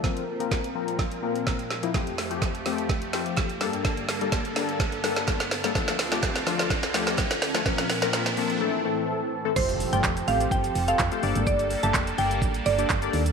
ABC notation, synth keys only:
X:1
M:4/4
L:1/16
Q:1/4=126
K:F
V:1 name="Synth keys"
[F,B,CB]2 z [F,B,CB]2 z [F,B,CB]2 z2 [F,B,CB]3 z2 [F,B,CE] | [F,A,CG]2 z [F,A,CG]2 z [F,A,CG]2 z2 [F,A,CG]3 z [G,B,DA]2- | [G,B,DA]2 z [G,B,DA]2 z [G,B,DA]2 z2 [G,B,DA]3 z2 [G,B,DA] | [F,A,DA]2 z [F,A,DG]2 z [F,A,DF]2 z2 [F,A,DG]3 z2 [F,A,DA] |
[F,B,CB]2 z [F,B,CB]2 z [F,B,CA]2 [E,A,CA]2 [E,A,CA]3 z2 [E,A,CA] | [A,CFGc]2 z [A,CFGd]2 z [A,CFGc]3 z2 [A,CFGA] z [A,CFGc] [B,DGAd]2- | [B,DGAd]2 z [B,DGAe]2 z [B,DGAd]3 z2 [B,DGAd] z [B,DGAd]2 z |]